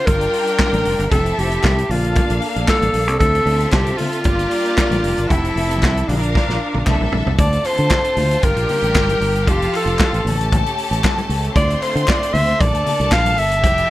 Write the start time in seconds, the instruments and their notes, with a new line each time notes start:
Already playing: string section F4
0.06 fingered electric bass G1, string section G3 D4 A#4 G5, alto saxophone A#4, kick, closed hi-hat, muted conga
0.21 closed hi-hat
0.33 open hi-hat
0.47 closed hi-hat
0.59 kick, snare, clap, high conga
0.73 fingered electric bass A1, closed hi-hat, high conga
0.85 fingered electric bass F1, open hi-hat
0.99 fingered electric bass G1, closed hi-hat
1.10 fingered electric bass F1, string section F3 C4 E4 G4 A4 E5, alto saxophone A4, kick, closed hi-hat, muted conga
1.26 closed hi-hat
1.38 fingered electric bass F1, alto saxophone G4, open hi-hat
1.52 closed hi-hat
1.63 fingered electric bass C2, kick, snare, clap, high conga
1.65 clap
1.78 closed hi-hat
1.89 fingered electric bass A#1, string section A#3 D4 A4 F5, alto saxophone F4, open hi-hat, muted conga, low conga
2.04 closed hi-hat
2.15 kick, closed hi-hat, muted conga
2.30 fingered electric bass A#1, closed hi-hat
2.42 open hi-hat
2.56 fingered electric bass A#1, closed hi-hat
2.68 alto saxophone A4, kick, snare, clap, high conga
2.82 fingered electric bass A1, closed hi-hat, high conga
2.94 fingered electric bass A#1, open hi-hat
3.07 fingered electric bass C2, closed hi-hat
3.19 fingered electric bass D2, string section D3 C4 F4 A4 E5, alto saxophone A4, kick, closed hi-hat, muted conga
3.35 closed hi-hat
3.46 fingered electric bass D2, open hi-hat
3.60 closed hi-hat
3.72 fingered electric bass C2, alto saxophone G4, kick, snare, clap, high conga
3.86 closed hi-hat
3.97 alto saxophone F4, open hi-hat, muted conga, low conga
4.13 closed hi-hat
4.24 fingered electric bass G1, string section G3 A#3 D4 G4 A#4 D5, kick, closed hi-hat, muted conga
4.39 closed hi-hat
4.51 open hi-hat
4.66 closed hi-hat
4.78 kick, snare, clap, high conga
4.91 fingered electric bass A1, closed hi-hat, high conga
5.03 fingered electric bass F1, open hi-hat
5.18 fingered electric bass G1, closed hi-hat
5.28 fingered electric bass F1, string section F3 C4 E4 G4 A4 E5, alto saxophone E4, kick, closed hi-hat, muted conga
5.45 closed hi-hat
5.56 fingered electric bass F1, open hi-hat
5.71 closed hi-hat
5.83 fingered electric bass C2, kick, snare, clap, high conga
5.85 clap
5.97 closed hi-hat
6.08 fingered electric bass A#1, string section F3 A#3 D4 A#4 F5, alto saxophone D4, open hi-hat, muted conga, low conga
6.17 alto saxophone E4
6.22 alto saxophone D4, closed hi-hat
6.35 kick, snare, muted conga
6.48 fingered electric bass A#1, snare
6.74 fingered electric bass A#1, high tom
6.86 fingered electric bass C2, string section C3 A#3 D4 E4 A4 E5, kick, clap, mid tom, high conga
7.00 fingered electric bass A#1, high conga
7.12 fingered electric bass A#1, floor tom, high conga
7.26 fingered electric bass C2, floor tom
7.38 fingered electric bass D2, string section D3 A3 C4 F4 A4 A5, alto saxophone D5, kick, closed hi-hat, muted conga
7.52 closed hi-hat
7.64 alto saxophone C5, clap, open hi-hat
7.78 fingered electric bass D3, closed hi-hat
7.90 kick, snare, clap, high conga
8.04 closed hi-hat
8.17 fingered electric bass D2, open hi-hat, low conga
8.31 closed hi-hat
8.42 fingered electric bass G1, string section G3 D4 G4 A#4 G5, alto saxophone A#4, kick, closed hi-hat, muted conga
8.56 fingered electric bass A#1, closed hi-hat
8.69 open hi-hat, low conga
8.83 fingered electric bass A1, closed hi-hat
8.95 fingered electric bass G1, kick, snare, clap, high conga
9.09 closed hi-hat, high conga
9.21 fingered electric bass G1, open hi-hat
9.35 closed hi-hat
9.47 fingered electric bass F1, string section F3 F4 G4 A4 F5, alto saxophone G4, kick, closed hi-hat, muted conga
9.62 closed hi-hat
9.74 alto saxophone A4, clap, open hi-hat
9.86 fingered electric bass F1, closed hi-hat
9.99 kick, snare, clap
10.00 clap, high conga
10.13 fingered electric bass A1, closed hi-hat
10.25 fingered electric bass A1, string section A3 C#4 G4 A4 A5, open hi-hat, low conga
10.41 closed hi-hat
10.52 kick, closed hi-hat, muted conga, low conga
10.66 closed hi-hat
10.78 open hi-hat
10.91 fingered electric bass A1, closed hi-hat
11.04 kick, snare, clap, high conga
11.18 closed hi-hat, high conga
11.29 fingered electric bass C#2, open hi-hat
11.44 closed hi-hat
11.55 fingered electric bass D2, string section D3 C4 F4 C5 C6, alto saxophone D5, kick, closed hi-hat, muted conga
11.70 closed hi-hat
11.82 alto saxophone C5, clap, open hi-hat
11.96 fingered electric bass D3, closed hi-hat
12.08 alto saxophone D5, kick, snare, clap, high conga
12.10 clap
12.23 closed hi-hat
12.34 fingered electric bass D2, alto saxophone E5, open hi-hat, muted conga, low conga
12.49 closed hi-hat
12.59 fingered electric bass A#1, string section A#3 D4 A4 A5, alto saxophone D5, kick, closed hi-hat, muted conga
12.74 fingered electric bass D2, closed hi-hat
12.86 open hi-hat, low conga
13.00 fingered electric bass C2, closed hi-hat
13.12 fingered electric bass A#1, alto saxophone F5, kick, snare, clap, high conga
13.26 closed hi-hat, high conga
13.38 fingered electric bass G1, alto saxophone E5, open hi-hat
13.51 closed hi-hat
13.62 fingered electric bass F1, string section F3 E4 G4 A4 G5, kick, closed hi-hat, muted conga
13.78 closed hi-hat